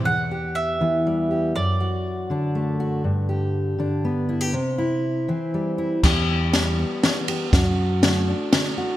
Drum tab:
CC |------|------|------|------|
RD |------|------|------|------|
SD |------|------|------|------|
BD |------|------|------|------|

CC |x-----|------|
RD |--x-xx|x-x-x-|
SD |o-o-o-|o-o-o-|
BD |o-----|o-----|